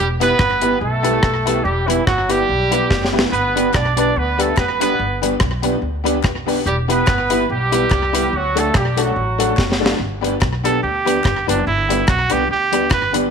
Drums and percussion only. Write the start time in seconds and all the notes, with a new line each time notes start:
0.21 closed hi-hat
0.39 kick, cross-stick
0.62 closed hi-hat
1.05 closed hi-hat
1.23 kick, cross-stick
1.47 closed hi-hat
1.90 closed hi-hat
2.07 kick, cross-stick
2.30 closed hi-hat
2.72 closed hi-hat
2.90 kick, snare
3.05 snare
3.19 snare
3.33 hi-hat pedal
3.57 closed hi-hat
3.74 kick, cross-stick, clap
3.97 closed hi-hat
4.40 closed hi-hat
4.57 kick, cross-stick, clap
4.81 closed hi-hat
5.23 closed hi-hat
5.40 kick, cross-stick, clap
5.63 closed hi-hat
6.06 closed hi-hat
6.23 kick, cross-stick, clap
6.48 open hi-hat
6.66 hi-hat pedal
6.90 closed hi-hat
7.07 kick, cross-stick, clap
7.30 closed hi-hat
7.72 closed hi-hat
7.90 kick, cross-stick, clap
8.15 closed hi-hat
8.57 closed hi-hat
8.74 kick, cross-stick, clap
8.97 closed hi-hat
9.40 closed hi-hat
9.57 kick, snare, clap
9.72 snare
9.86 snare
10.24 closed hi-hat
10.41 kick, cross-stick, clap
10.65 closed hi-hat
11.07 closed hi-hat
11.24 kick, cross-stick, clap
11.49 closed hi-hat
11.90 closed hi-hat
12.08 kick, cross-stick, clap
12.30 closed hi-hat
12.73 closed hi-hat
12.90 kick, cross-stick, clap
13.14 closed hi-hat